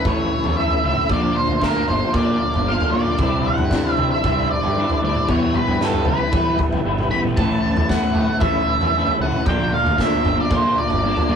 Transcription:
Already playing: C#4 A4 E5
0.05 A1 E3 A3 C#4 E4 C#5, kick, floor tom
0.44 E2, floor tom
0.57 E3 A3 C#4 E4 E5
0.70 floor tom
0.83 C#2 A3 C#4 E4 E5, low conga
0.95 mid tom, high conga
1.09 A#1 A#2 D3 A#3 D4 F4 A#4 D5 F5, kick, floor tom
1.36 C5, high conga, low conga
1.47 D2, floor tom, high conga
1.60 A#2 D3 A#3 D4 F4 A#4, kick, snare
1.88 G1 D4 F4 C5, floor tom, high conga, low conga
1.92 A#3
2.13 A#2 D3 A#3 D4 D5, kick, floor tom
2.18 F4
2.54 G1, floor tom
2.66 D3 A#3 D4 F4 F5
2.80 floor tom
2.91 A#2 F4 D5, low conga
2.95 A#3 D4
3.05 mid tom
3.18 C2 C3 E3 G3 D4 E4 C5 E5, kick, floor tom
3.45 F#5, high conga, low conga
3.58 G2, floor tom, high conga
3.71 C3 E3 G3 D4 E4, kick, snare
3.84 high conga
3.92 E5
3.97 C3 G3 D4 E4, floor tom, high conga, low conga
4.12 E5
4.23 C2 E3 G3 D4 E4, kick, floor tom
4.51 D5
4.63 G2, floor tom
4.77 E3 G3 D4 E4
4.90 floor tom
5.02 D2 G3 D4 E4 D5, low conga
5.15 mid tom, high conga
5.28 E2 B2 E3 G3 B3 E4 B4 C#5 G5, kick, floor tom, low conga
5.32 E4
5.54 B4, floor tom, high conga, low conga
5.68 G2, floor tom, high conga
5.80 E2 B2 E3 G3 B3 E4 A4, snare
5.93 floor tom, high conga
6.05 C#2 B3 E4 B4, floor tom, high conga, low conga
6.09 E3 G3
6.32 E3 G3 B3 E4, kick, floor tom
6.58 kick, floor tom
6.72 C#2, floor tom
6.84 G1 E3 G3 B3 E4
6.98 mid tom
7.10 A1 E3 G3 B3 E4 B5, low conga
7.24 mid tom, high conga
7.36 A1 A2 E3 C#5 A5, kick, floor tom
7.41 A3 C#4 E4
7.64 high conga, low conga
7.75 E2, floor tom, high conga
7.89 A2 E3 A3 C#4 F#5, kick, snare
7.94 E4
8.02 high conga
8.14 A2 E4, floor tom, high conga, low conga
8.18 A3 C#4
8.40 A1 E3 A3 E5, kick, floor tom
8.45 C#4 E4
8.80 E2, floor tom
8.95 E3 A3 C#4 E4
9.07 floor tom
9.19 C#2 C#4 E4 F#5, low conga
9.24 A3
9.32 mid tom, high conga
9.45 A#1 A#2 D3 A#3 D4 F4 D5 G5 A#5, kick, floor tom
9.49 F4
9.71 F5, high conga, low conga
9.84 D2, floor tom, high conga
9.98 A#2 D3 A#3 D4 F4 E5, kick, snare
10.09 high conga
10.24 G1 D4 F4, floor tom, high conga, low conga
10.28 A#3
10.40 D5
10.51 A#2 D3 A#3 D4 F4, kick, floor tom
10.55 C5
10.78 D5
10.90 G1, floor tom
11.04 D3 A#3 D4 F4
11.17 floor tom
11.28 A#2 F4 D5, low conga
11.32 A#3 D4

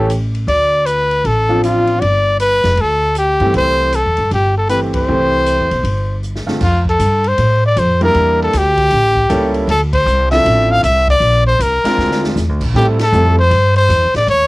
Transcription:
Already playing: A1 A4
0.10 hi-hat pedal, ride
0.35 ride
0.47 D2 D5, ride
0.86 B4, hi-hat pedal, ride
1.11 ride
1.24 A1 A4, ride
1.49 F3 C4 D4 F4
1.63 F4, hi-hat pedal, ride
1.87 ride
2.01 G1 D5, ride
2.40 B4, hi-hat pedal, ride
2.64 F1, snare, ride
2.77 D2 A4, ride
3.15 G4, hi-hat pedal, ride
3.40 G2 E3 A3 C4 G4, ride
3.54 C2 C5, ride
3.93 A4, hi-hat pedal, ride
4.05 E2
4.17 G2, ride
4.31 G1 G4, ride
4.58 A4
4.69 E3 A3 C4 G4 B4, hi-hat pedal, ride
4.94 C5, kick, ride
5.08 C2 E3 A3 C4 G4
5.46 hi-hat pedal, ride
5.59 E2
5.71 B1, ride
5.83 G1, ride
6.23 hi-hat pedal
6.36 snare
6.47 D3 A3 C4 F4, muted upright bass stroke, snare
6.61 F2 F4, kick, snare, crash
6.85 A4, kick
6.99 G2, hi-hat pedal, ride
7.24 C5, ride
7.38 A2, ride
7.66 D5
7.76 F2 C5, hi-hat pedal, ride
8.01 G3 A#3 D4 E4 A#4, ride
8.14 E2, ride
8.42 A4
8.53 D2, snare, hi-hat pedal, ride
8.58 G4
8.77 kick, ride
8.90 A1, ride
9.16 kick
9.30 C#2 G3 A#3 C#4 E4 A4, hi-hat pedal, ride
9.54 ride
9.67 D2 A4, ride
9.93 C5, kick, ride
10.06 C2, hi-hat pedal
10.31 F3 C4 D4 E4 A4 E5, snare, ride
10.45 A1, ride
10.71 F5
10.83 C2 E5, hi-hat pedal, ride
11.08 D5, kick
11.20 A#1, ride
11.47 C5
11.59 C2 A#4, hi-hat pedal, ride
11.84 G#3 C4 D4 F4 A#4, muted upright bass stroke, snare, ride
11.97 D2, snare
12.11 snare
12.24 snare
12.36 E2, snare, hi-hat pedal
12.49 D2
12.61 A#1, kick, crash
12.74 A2 G3 A3 C4 E4 G4 A4
12.99 A4, snare, ride
13.13 F2 G3 A3 C4 E4 A4, hi-hat pedal
13.39 C5
13.51 G2, ride
13.76 C5, ride
13.89 E2, hi-hat pedal, ride
14.03 C2
14.14 A1 D5, snare, ride
14.27 D#2 C#5, ride

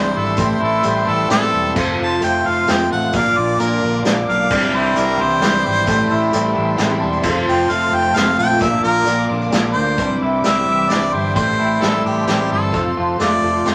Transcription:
Already playing: C2 C3 E3 G3 D4 E4 G4 C5 D5 E5 C6
0.14 G#1 G3 A4
0.26 tambourine
0.36 A1 A2 E3 G3 C4 E4 G4 A4 C5 G5, kick, closed hi-hat, tambourine
0.60 A1 E4 A4
0.72 tambourine
0.82 A1 E3 G3 C4 G4 A4 C5, closed hi-hat, tambourine
0.86 E4 C5
1.06 A1 E3 G3 C4 E4 A4
1.28 A1 E3 G3 C4 E4 G4 A4 C5, snare, closed hi-hat, tambourine
1.51 E1 G3
1.65 tambourine
1.74 F1 F2 C3 F3 A3 C4 F4 A4 C5 F5, kick, crash, tambourine
1.97 F1 F4
2.03 A5
2.12 tambourine
2.20 F1 F3 A3 C4 F4 A4 C5, closed hi-hat, tambourine
2.24 G5
2.44 F1 F3 A3 C4 F4 F5
2.65 F1 F3 A3 C4 F4 A4 C5, snare, closed hi-hat, tambourine
2.70 G5
2.89 A1 F3 A3 C4 F4 F#5
3.00 tambourine
3.12 A#1 A#2 D3 A#3 D4 F4 A#4 D5 F5 D6, kick, closed hi-hat, tambourine
3.37 A#1 F4 D5
3.58 A#1 D3 A#3 D4 F4 A#4 D5, closed hi-hat, tambourine
3.81 A#1 D3 A#3 D4 F4
4.01 D3 A#3 D4 F4 A#4 D5, closed hi-hat, tambourine
4.05 A#1, snare
4.28 B1 A#3 F5
4.49 C2 C3 E3 G3 D4 E4 C5 D5 E5 G5, kick, tambourine, crash
4.73 C2 E4 C5
4.86 tambourine
4.93 C2 E3 G3 D4 E4 C5 D5, closed hi-hat, tambourine
4.98 A#4
5.20 C2 E3 C5
5.39 C2 E3 G3 D4 E4 C5 D5, snare, closed hi-hat, tambourine
5.66 G#1 G3
5.76 tambourine
5.85 A1 A2 E3 G3 C4 E4 G4 A4 C5 G5, kick, closed hi-hat, tambourine
5.89 A4 C6
6.11 A1 E4
6.22 tambourine
6.31 A1 E3 G3 C4 E4 G4 A4 D5, closed hi-hat, tambourine
6.54 A1 E3 E5
6.76 A1 E3 G3 C4 E4 G4 A4 D5 G5, snare, closed hi-hat, tambourine
6.99 E1 G3 C4 E4 A5
7.13 tambourine
7.21 F1 F2 C3 F3 A3 C4 F4 A4 C5 F5, kick, tambourine, crash
7.47 F1 F4 G5
7.59 tambourine
7.67 F1 F3 A3 C4 F4 A4 C5 F5, closed hi-hat, tambourine
7.92 F1 F3 G5
8.13 F1 F3 A3 C4 F4 A4 C5 F5, snare, closed hi-hat, tambourine
8.18 F4
8.37 A#1 F3 A3 C4 F4 G5
8.50 tambourine
8.58 A#1 A#2 D3 A#3 D4 F4 A#4 D5 E5 D6, kick, closed hi-hat, tambourine
8.84 A#1 F4 A#4
9.03 A#1 D3 A#3 F4 A#4 D5, closed hi-hat, tambourine
9.07 D4 F4
9.30 A#1 D3 A#3 D4 F4
9.42 tambourine
9.50 A#1 D3 A#3 D4 F4 A#4 D5, snare, closed hi-hat, tambourine
9.73 D2 C5
9.78 A#3
9.97 C2 C3 E3 G3 D4 E4 C5 D5 E5 G5 D6, kick, closed hi-hat
10.21 C2 E4
10.43 C2 E3 G3 D4 E4 C5 D5 E5, snare, closed hi-hat
10.66 C2 E3 G3 D4 E4
10.87 C2 E3 G3 D4 E4 C5 D5 E5, snare, closed hi-hat
10.92 E4
11.13 G1 G3 C5
11.33 A1 A2 E3 G3 C4 E4 G4 A4 C5 C6, kick, closed hi-hat
11.60 A1 E4
11.79 A1 E3 G3 C4 E4 G4 A4 C5, snare, closed hi-hat
12.04 A1 E3 G4
12.25 A1 E3 G3 C4 E4 G4 A4 C5, snare, closed hi-hat
12.48 G1 G3 C4 E4
12.52 A4
12.71 F1 F2 C3 F3 A3 C4 F4 A4 C5 F5, kick, closed hi-hat
12.97 F1 F4
13.17 F1 F3 A3 C4 F4 A4 C5, snare, closed hi-hat
13.21 D5
13.42 F1 F3 A3 C4 F4
13.63 F1 F3 A3 C4 F4 A4 C5, snare, closed hi-hat
13.69 F4 C5

